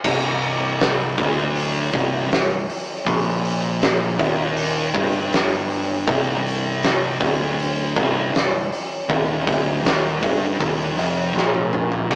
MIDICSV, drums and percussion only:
0, 0, Header, 1, 2, 480
1, 0, Start_track
1, 0, Key_signature, -3, "minor"
1, 0, Tempo, 753769
1, 32, Time_signature, 4, 2, 24, 8
1, 7739, End_track
2, 0, Start_track
2, 0, Title_t, "Drums"
2, 26, Note_on_c, 9, 49, 112
2, 30, Note_on_c, 9, 36, 108
2, 90, Note_off_c, 9, 49, 0
2, 94, Note_off_c, 9, 36, 0
2, 269, Note_on_c, 9, 46, 67
2, 332, Note_off_c, 9, 46, 0
2, 509, Note_on_c, 9, 46, 86
2, 518, Note_on_c, 9, 38, 117
2, 573, Note_off_c, 9, 46, 0
2, 582, Note_off_c, 9, 38, 0
2, 750, Note_on_c, 9, 46, 65
2, 752, Note_on_c, 9, 36, 111
2, 814, Note_off_c, 9, 46, 0
2, 815, Note_off_c, 9, 36, 0
2, 990, Note_on_c, 9, 46, 85
2, 1053, Note_off_c, 9, 46, 0
2, 1232, Note_on_c, 9, 36, 110
2, 1233, Note_on_c, 9, 46, 67
2, 1296, Note_off_c, 9, 36, 0
2, 1296, Note_off_c, 9, 46, 0
2, 1474, Note_on_c, 9, 46, 76
2, 1483, Note_on_c, 9, 38, 107
2, 1538, Note_off_c, 9, 46, 0
2, 1547, Note_off_c, 9, 38, 0
2, 1716, Note_on_c, 9, 46, 66
2, 1780, Note_off_c, 9, 46, 0
2, 1952, Note_on_c, 9, 36, 104
2, 1954, Note_on_c, 9, 46, 84
2, 2016, Note_off_c, 9, 36, 0
2, 2018, Note_off_c, 9, 46, 0
2, 2196, Note_on_c, 9, 46, 63
2, 2260, Note_off_c, 9, 46, 0
2, 2430, Note_on_c, 9, 46, 91
2, 2439, Note_on_c, 9, 38, 122
2, 2494, Note_off_c, 9, 46, 0
2, 2503, Note_off_c, 9, 38, 0
2, 2670, Note_on_c, 9, 36, 104
2, 2671, Note_on_c, 9, 46, 69
2, 2734, Note_off_c, 9, 36, 0
2, 2735, Note_off_c, 9, 46, 0
2, 2909, Note_on_c, 9, 46, 99
2, 2973, Note_off_c, 9, 46, 0
2, 3149, Note_on_c, 9, 36, 112
2, 3150, Note_on_c, 9, 46, 70
2, 3213, Note_off_c, 9, 36, 0
2, 3213, Note_off_c, 9, 46, 0
2, 3393, Note_on_c, 9, 46, 86
2, 3402, Note_on_c, 9, 38, 108
2, 3456, Note_off_c, 9, 46, 0
2, 3465, Note_off_c, 9, 38, 0
2, 3631, Note_on_c, 9, 46, 73
2, 3694, Note_off_c, 9, 46, 0
2, 3868, Note_on_c, 9, 46, 86
2, 3869, Note_on_c, 9, 36, 113
2, 3932, Note_off_c, 9, 46, 0
2, 3933, Note_off_c, 9, 36, 0
2, 4114, Note_on_c, 9, 46, 68
2, 4178, Note_off_c, 9, 46, 0
2, 4350, Note_on_c, 9, 46, 92
2, 4359, Note_on_c, 9, 38, 118
2, 4414, Note_off_c, 9, 46, 0
2, 4423, Note_off_c, 9, 38, 0
2, 4590, Note_on_c, 9, 36, 105
2, 4591, Note_on_c, 9, 46, 66
2, 4654, Note_off_c, 9, 36, 0
2, 4654, Note_off_c, 9, 46, 0
2, 4834, Note_on_c, 9, 46, 81
2, 4898, Note_off_c, 9, 46, 0
2, 5071, Note_on_c, 9, 36, 112
2, 5074, Note_on_c, 9, 46, 66
2, 5135, Note_off_c, 9, 36, 0
2, 5138, Note_off_c, 9, 46, 0
2, 5315, Note_on_c, 9, 46, 80
2, 5324, Note_on_c, 9, 38, 101
2, 5379, Note_off_c, 9, 46, 0
2, 5388, Note_off_c, 9, 38, 0
2, 5556, Note_on_c, 9, 46, 61
2, 5620, Note_off_c, 9, 46, 0
2, 5793, Note_on_c, 9, 36, 113
2, 5796, Note_on_c, 9, 46, 75
2, 5856, Note_off_c, 9, 36, 0
2, 5859, Note_off_c, 9, 46, 0
2, 6033, Note_on_c, 9, 36, 106
2, 6033, Note_on_c, 9, 46, 68
2, 6096, Note_off_c, 9, 36, 0
2, 6097, Note_off_c, 9, 46, 0
2, 6273, Note_on_c, 9, 46, 90
2, 6282, Note_on_c, 9, 38, 118
2, 6337, Note_off_c, 9, 46, 0
2, 6346, Note_off_c, 9, 38, 0
2, 6513, Note_on_c, 9, 36, 117
2, 6516, Note_on_c, 9, 46, 68
2, 6577, Note_off_c, 9, 36, 0
2, 6579, Note_off_c, 9, 46, 0
2, 6753, Note_on_c, 9, 36, 107
2, 6755, Note_on_c, 9, 46, 92
2, 6817, Note_off_c, 9, 36, 0
2, 6819, Note_off_c, 9, 46, 0
2, 6995, Note_on_c, 9, 46, 67
2, 7059, Note_off_c, 9, 46, 0
2, 7242, Note_on_c, 9, 38, 65
2, 7305, Note_off_c, 9, 38, 0
2, 7352, Note_on_c, 9, 48, 70
2, 7415, Note_off_c, 9, 48, 0
2, 7469, Note_on_c, 9, 45, 104
2, 7533, Note_off_c, 9, 45, 0
2, 7589, Note_on_c, 9, 43, 95
2, 7653, Note_off_c, 9, 43, 0
2, 7710, Note_on_c, 9, 49, 98
2, 7711, Note_on_c, 9, 36, 105
2, 7739, Note_off_c, 9, 36, 0
2, 7739, Note_off_c, 9, 49, 0
2, 7739, End_track
0, 0, End_of_file